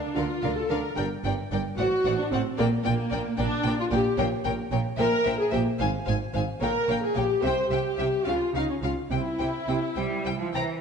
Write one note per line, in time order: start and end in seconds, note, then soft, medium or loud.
0.00 0.15 D4 medium
0.16 0.24 D2 medium
0.16 0.24 D3 medium
0.16 0.56 F4 medium
0.16 0.25 A#4 medium
0.16 0.24 D5 medium
0.16 0.24 F5 medium
0.43 0.51 D2 medium
0.43 0.51 D3 medium
0.43 0.51 A#4 medium
0.43 0.52 D5 medium
0.43 0.51 F5 medium
0.57 0.70 A4 medium
0.70 0.78 D2 medium
0.70 0.78 D3 medium
0.70 0.97 A#4 medium
0.70 0.79 A#4 medium
0.70 0.79 D5 medium
0.70 0.78 F5 medium
0.97 1.05 G1 medium
0.97 1.05 G2 medium
0.97 1.06 A#4 medium
0.97 1.05 D5 medium
0.97 1.05 G5 medium
1.24 1.32 G1 medium
1.24 1.32 G2 medium
1.24 1.33 A#4 medium
1.24 1.33 D5 medium
1.24 1.32 G5 medium
1.51 1.59 G1 medium
1.51 1.60 G2 medium
1.51 1.60 A#4 medium
1.51 1.60 D5 medium
1.51 1.60 G5 medium
1.78 1.86 A1 medium
1.78 1.86 A2 medium
1.78 2.15 F#4 loud
1.78 1.86 C5 medium
1.78 1.86 D5 medium
1.78 1.87 F#5 medium
2.05 2.13 A1 medium
2.05 2.13 A2 medium
2.05 2.13 C5 medium
2.05 2.13 D5 medium
2.05 2.13 F#5 medium
2.19 2.32 D4 medium
2.31 2.40 A1 medium
2.31 2.40 A2 medium
2.31 2.39 C4 medium
2.31 2.40 C5 medium
2.31 2.39 D5 medium
2.31 2.41 F#5 medium
2.58 2.67 A#1 medium
2.58 2.67 A#2 medium
2.58 2.67 A#3 loud
2.58 2.66 A#4 medium
2.58 2.66 D5 medium
2.58 2.67 G5 medium
2.84 2.94 A#1 medium
2.84 2.93 A#2 medium
2.84 3.38 A#3 medium
2.84 2.92 A#4 medium
2.84 2.92 D5 medium
2.84 2.92 G5 medium
3.10 3.20 A#1 medium
3.10 3.20 A#2 medium
3.10 3.19 A#4 medium
3.10 3.18 D5 medium
3.10 3.20 G5 medium
3.38 3.47 A#1 medium
3.38 3.46 A#2 medium
3.38 3.78 D4 loud
3.38 3.46 A#4 medium
3.38 3.46 D5 medium
3.38 3.46 G5 medium
3.63 3.73 A#1 medium
3.63 3.73 A#2 medium
3.63 3.74 A#4 medium
3.63 3.74 D5 medium
3.63 3.71 G5 medium
3.79 3.84 F4 loud
3.91 4.00 A#1 medium
3.91 4.00 A#2 medium
3.91 4.18 G4 medium
3.91 3.99 A#4 medium
3.91 3.99 D5 medium
3.91 3.99 G5 medium
4.18 4.27 A#1 medium
4.18 4.26 A#2 medium
4.18 4.26 A#4 medium
4.18 4.26 C#5 medium
4.18 4.26 G5 medium
4.45 4.53 A#1 medium
4.45 4.53 A#2 medium
4.45 4.53 A#4 medium
4.45 4.54 C#5 medium
4.45 4.53 G5 medium
4.71 4.79 A#1 medium
4.71 4.80 A#2 medium
4.71 4.80 A#4 medium
4.71 4.79 C#5 medium
4.71 4.79 G5 medium
4.97 5.06 A#1 medium
4.97 5.07 A#2 medium
4.97 5.36 A#4 loud
4.97 5.06 C5 medium
4.97 5.05 E5 medium
4.97 5.06 G5 medium
5.24 5.33 A#1 medium
5.24 5.34 A#2 medium
5.24 5.32 C5 medium
5.24 5.32 E5 medium
5.24 5.34 G5 medium
5.40 5.53 G#4 medium
5.51 5.61 A#1 medium
5.51 5.61 A#2 medium
5.51 5.60 G4 medium
5.51 5.59 C5 medium
5.51 5.59 E5 medium
5.51 5.61 G5 medium
5.78 5.88 G#1 medium
5.78 5.88 G#2 medium
5.78 5.87 C5 medium
5.78 5.86 F5 medium
5.78 5.88 G#5 medium
6.05 6.15 G#1 medium
6.05 6.15 G#2 medium
6.05 6.13 C5 medium
6.05 6.14 F5 medium
6.05 6.16 G#5 medium
6.33 6.42 G#1 medium
6.33 6.43 G#2 medium
6.33 6.41 C5 medium
6.33 6.41 F5 medium
6.33 6.44 G#5 medium
6.60 6.70 A#1 medium
6.60 6.70 A#2 medium
6.60 7.00 A#4 loud
6.60 6.68 C#5 medium
6.60 6.69 F5 medium
6.60 6.71 G5 medium
6.88 6.97 A#1 medium
6.88 6.97 A#2 medium
6.88 6.96 C#5 medium
6.88 6.96 F5 medium
6.88 6.99 G5 medium
7.03 7.16 G#4 medium
7.15 7.24 A#1 medium
7.15 7.24 A#2 medium
7.15 7.43 G4 medium
7.15 7.23 C#5 medium
7.15 7.23 F5 medium
7.15 7.25 G5 soft
7.43 7.51 C2 medium
7.43 7.51 C3 medium
7.43 7.51 C5 medium
7.43 7.71 C5 loud
7.43 7.51 E5 medium
7.43 7.54 G5 medium
7.70 7.78 C2 medium
7.70 7.79 C3 medium
7.70 8.25 G4 medium
7.70 7.78 C5 medium
7.70 7.78 E5 medium
7.70 7.80 G5 medium
7.97 8.06 C2 medium
7.97 8.06 C3 medium
7.97 8.06 C5 medium
7.97 8.05 E5 medium
7.97 8.07 G5 medium
8.25 8.34 C#2 medium
8.25 8.34 C#3 medium
8.25 8.54 F4 medium
8.25 8.33 F5 medium
8.25 8.36 F5 medium
8.54 8.62 C#2 medium
8.54 8.62 C#3 medium
8.54 8.69 D#4 medium
8.54 8.63 F5 medium
8.54 8.64 F5 medium
8.70 8.75 C#4 medium
8.82 8.90 C#2 medium
8.82 8.90 C#3 medium
8.82 8.92 F4 medium
8.82 8.91 F5 medium
8.82 8.91 F5 soft
9.10 9.18 C2 medium
9.10 9.19 C3 medium
9.10 10.51 E4 medium
9.10 9.20 C5 soft
9.10 9.19 G5 soft
9.10 9.19 G5 medium
9.39 9.47 C2 medium
9.39 9.48 C3 medium
9.39 9.47 C5 soft
9.39 9.47 G5 medium
9.39 9.47 G5 soft
9.67 9.76 C2 medium
9.67 9.76 C3 medium
9.67 9.75 C5 soft
9.67 9.76 G5 soft
9.67 9.77 G5 soft
9.96 10.04 C2 medium
9.96 10.36 G3 medium
9.96 10.04 C5 soft
9.96 10.04 G5 soft
9.96 10.05 G5 soft
10.25 10.33 C2 medium
10.25 10.33 C5 soft
10.25 10.33 G5 medium
10.25 10.34 G5 medium
10.40 10.54 F3 medium
10.54 10.62 C2 medium
10.54 10.81 E3 medium
10.54 10.62 C5 soft
10.54 10.62 G5 soft
10.54 10.63 G5 soft
10.54 10.64 A#5 medium